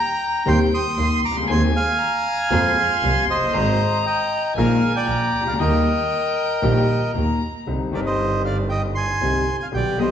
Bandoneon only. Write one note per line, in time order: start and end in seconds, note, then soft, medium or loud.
0.00 0.44 G5 medium
0.00 0.49 A#5 medium
0.48 0.59 G5 medium
0.48 0.59 C6 loud
0.74 1.21 C6 medium
0.74 1.21 D#6 medium
1.25 1.36 A#5 medium
1.25 1.36 D6 medium
1.51 1.63 G#5 medium
1.51 1.62 C6 medium
1.76 3.25 F5 medium
1.76 3.25 G#5 loud
3.30 4.02 C5 medium
3.30 4.05 D#5 medium
4.06 4.54 D#5 medium
4.06 4.53 G5 medium
4.57 4.93 A#4 medium
4.57 4.93 F5 medium
4.96 5.44 D5 medium
4.96 5.48 G5 medium
5.48 5.54 D5 medium
5.48 5.53 F5 medium
5.60 7.11 A#4 medium
5.60 7.11 D#5 medium
7.94 8.01 A#4 medium
7.94 8.00 D5 medium
8.06 8.43 C5 medium
8.06 8.42 D#5 medium
8.45 8.58 D5 medium
8.45 8.56 F5 medium
8.69 8.82 D#5 medium
8.69 8.81 G5 medium
8.95 9.57 G#5 medium
8.95 9.56 C6 medium
9.60 9.68 F5 medium
9.60 9.66 G#5 medium
9.74 9.99 D5 medium
9.74 10.00 G5 medium
9.99 10.11 C5 medium
9.99 10.11 D#5 medium